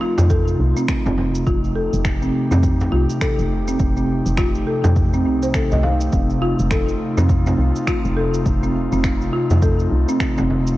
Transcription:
Already playing: analog synth pad C3 A3 D#4 F4, singing bowl F3 F4
0.01 marimba F4
0.18 fm bass F2, frame drum, shaker
0.30 marimba A4, kick, shaker
0.47 shaker
0.59 fm bass C2
0.77 marimba C4, shaker
0.88 finger snap, kick, shaker
1.06 fm bass F1, marimba C4, frame drum, shaker
1.18 frame drum
1.35 shaker
1.46 fm bass F1, marimba F4, analog synth pad G4, kick, shaker
1.64 shaker
1.75 marimba A4
1.93 fm bass F1, shaker
2.05 finger snap, kick, shaker
2.22 marimba C4, shaker
2.51 fm bass F2, marimba C4, frame drum, shaker
2.63 kick, shaker
2.80 frame drum, shaker
2.92 fm bass C2, marimba F4
3.10 shaker
3.21 marimba A4, finger snap, kick, shaker
3.39 fm bass F1, shaker
3.68 marimba C4, shaker
3.79 fm bass F1, kick, shaker
3.97 marimba C4, shaker
4.26 fm bass F1, shaker
4.38 marimba F4, finger snap, kick, shaker
4.55 shaker
4.67 marimba A4
4.84 fm bass F2, frame drum, shaker
4.96 kick, shaker
5.13 marimba C4, shaker
5.25 fm bass C2, marimba C4
5.42 marimba C5, shaker
5.54 marimba A4, finger snap, kick, shaker
5.71 fm bass C2, marimba D#5, frame drum, shaker
5.83 marimba F5, frame drum
6.01 shaker
6.12 fm bass F1, singing bowl C4, analog synth pad F4, kick, shaker
6.30 shaker
6.42 marimba F4
6.59 fm bass F1, shaker
6.71 marimba A4, finger snap, kick, shaker
6.88 shaker
7.17 fm bass F2, marimba C4, frame drum, shaker
7.29 kick, shaker
7.46 marimba C4, frame drum, shaker
7.58 fm bass C2
7.76 shaker
7.87 marimba F4, finger snap, kick, shaker
8.05 fm bass F1, shaker
8.17 marimba A4
8.34 shaker
8.46 fm bass F1, kick, shaker
8.63 marimba C4, shaker
8.92 fm bass F1, marimba C4, shaker
9.04 finger snap, kick, shaker
9.21 shaker
9.33 marimba F4
9.50 fm bass F2, frame drum, shaker
9.62 marimba A4, kick, shaker
9.79 shaker
9.91 fm bass C2
10.09 marimba C4, shaker
10.20 finger snap, kick, shaker
10.38 fm bass F1, marimba C4, frame drum, shaker
10.50 frame drum
10.67 shaker

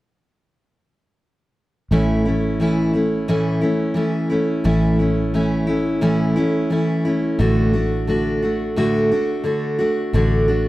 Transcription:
1.91 fingered electric bass A1, steel-string acoustic guitar A2 E3 A3 C#4 E4
2.25 steel-string acoustic guitar A3 C#4 E4
2.60 steel-string acoustic guitar E3 A3 C#4 E4
2.93 steel-string acoustic guitar A3 C#4 E4
3.28 steel-string acoustic guitar A2 E3 A3 C#4 E4
3.61 steel-string acoustic guitar A3 C#4 E4
3.94 steel-string acoustic guitar E3 A3 C#4 E4
4.30 steel-string acoustic guitar A3 C#4 E4
4.64 fingered electric bass A1, steel-string acoustic guitar A2 E3 A3 C#4 E4
4.99 steel-string acoustic guitar A3 C#4 E4
5.34 steel-string acoustic guitar E3 A3 C#4 E4
5.67 steel-string acoustic guitar A3 C#4 E4
6.01 steel-string acoustic guitar A2 E3 A3 C#4 E4
6.36 steel-string acoustic guitar A3 C#4 E4
6.70 steel-string acoustic guitar E3 A3 C#4 E4
7.05 steel-string acoustic guitar A3 C#4 E4
7.39 fingered electric bass A1, steel-string acoustic guitar A2 D3 A3 D4 F#4
7.73 steel-string acoustic guitar A3 D4 F#4
8.07 steel-string acoustic guitar D3 A3 D4 F#4
8.42 steel-string acoustic guitar A3 D4 F#4
8.76 steel-string acoustic guitar A2 D3 A3 D4 F#4
9.12 steel-string acoustic guitar A3 D4 F#4
9.44 steel-string acoustic guitar D3 A3 D4 F#4
9.79 steel-string acoustic guitar A3 D4 F#4
10.13 fingered electric bass A1, steel-string acoustic guitar A2 D3 A3 D4 F#4
10.48 steel-string acoustic guitar A3 D4 F#4

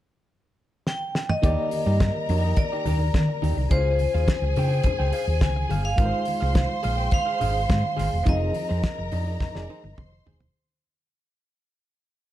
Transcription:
0.87 vibraphone G5, snare
1.15 snare
1.29 vibraphone D#5, mid tom
1.42 fingered electric bass D#2, reed electric piano D#3 A#3 G4 D5, clean electric guitar D#4 G4 D5, string section A#4 A#5, kick, closed hi-hat, muted conga
1.71 muted clean electric guitar stroke, open hi-hat, muted conga
1.86 fingered electric bass G2, clean electric guitar D#4 G4 D5
2.00 kick, snare, closed hi-hat, high conga
2.15 muted clean electric guitar stroke
2.29 fingered electric bass F2, clean electric guitar D#4 G4 D5, open hi-hat
2.44 clean electric guitar D#4 G4 D#5
2.56 vibraphone D5, muted clean electric guitar stroke, kick, closed hi-hat, muted conga
2.72 clean electric guitar D#4 G4 D5
2.85 fingered electric bass D#2, clean electric guitar D#4 G4 D5, open hi-hat, low conga
3.00 muted clean electric guitar stroke
3.14 fingered electric bass D#3, kick, snare, closed hi-hat, high conga
3.29 muted clean electric guitar stroke
3.42 fingered electric bass D#2, clean electric guitar D#4 G4 D5, open hi-hat, high conga
3.57 fingered electric bass C2, muted clean electric guitar stroke
3.69 fingered electric bass C#2, reed electric piano C#3 C#4 E4 C5, clean electric guitar G#4 C5 F5, string section G#4 G#5, vibraphone C5, kick, closed hi-hat, muted conga
3.78 reed electric piano F4
3.99 muted clean electric guitar stroke, open hi-hat, muted conga
4.14 fingered electric bass D#2, clean electric guitar G#4 C5 F5
4.28 kick, snare, closed hi-hat, high conga
4.42 fingered electric bass C#2, muted clean electric guitar stroke
4.56 fingered electric bass C#3, clean electric guitar G#4 C5 G5, open hi-hat, low conga
4.71 clean electric guitar G#4 C5 G5
4.83 muted clean electric guitar stroke, kick, closed hi-hat, muted conga, low conga
4.99 fingered electric bass C#2, clean electric guitar G#4 C5 G5
5.12 clean electric guitar G#4 C5 F5, open hi-hat
5.27 fingered electric bass D#2, muted clean electric guitar stroke
5.41 fingered electric bass C#2, vibraphone G#5, muted clean electric guitar stroke, kick, snare, closed hi-hat, high conga
5.56 muted clean electric guitar stroke
5.69 fingered electric bass G1, clean electric guitar G#4 C5 F5, open hi-hat, high conga
5.84 vibraphone F5, muted clean electric guitar stroke
5.96 fingered electric bass G#1, reed electric piano G#3 D#4 F4 A#4, clean electric guitar G#4 C5 F5, string section C5 C6, kick, closed hi-hat, muted conga
6.06 reed electric piano C5
6.25 muted clean electric guitar stroke, open hi-hat, muted conga
6.40 fingered electric bass C2, clean electric guitar G#4 C5 F5
6.55 muted clean electric guitar stroke, kick, snare, closed hi-hat, high conga
6.69 muted clean electric guitar stroke
6.83 fingered electric bass A#1, clean electric guitar G#4 C5 F5, open hi-hat
6.97 clean electric guitar G#4 C5 G5
7.11 vibraphone F5, muted clean electric guitar stroke, kick, closed hi-hat, muted conga
7.26 clean electric guitar G#4 C5 F5
7.40 fingered electric bass G#1, clean electric guitar G#4 C5 F5, open hi-hat, muted conga, low conga
7.54 muted clean electric guitar stroke
7.69 fingered electric bass G#2, kick, snare, closed hi-hat, high conga
7.83 muted clean electric guitar stroke
7.96 fingered electric bass G#1, clean electric guitar G#4 C5 F5, snare, open hi-hat, high conga
8.12 fingered electric bass E1, muted clean electric guitar stroke
8.25 fingered electric bass F1, reed electric piano F3 C4 D#4 G#4, clean electric guitar D#4 G#4 C5, string section A#4 A#5, vibraphone D#5, kick, closed hi-hat, muted conga
8.54 muted clean electric guitar stroke, open hi-hat, muted conga
8.69 fingered electric bass F2, clean electric guitar D#4 G#4 C5
8.83 muted clean electric guitar stroke, kick, snare, closed hi-hat, high conga
8.98 fingered electric bass F1, muted clean electric guitar stroke
9.12 fingered electric bass F2, clean electric guitar D#4 G#4 D5, open hi-hat, low conga
9.26 clean electric guitar D#4 G#4 D5
9.40 muted clean electric guitar stroke, kick, snare, muted conga, low conga
9.55 fingered electric bass F1, clean electric guitar D#4 G#4 D5, snare
9.69 clean electric guitar D#4 G#4 C5, muted conga
9.84 fingered electric bass G1, high tom
9.96 fingered electric bass F1, string section C5 C6, muted clean electric guitar stroke, kick, mid tom, high conga
10.12 muted clean electric guitar stroke
10.26 fingered electric bass E1, clean electric guitar D#4 G#4 C5, floor tom, high conga
10.40 muted clean electric guitar stroke, floor tom

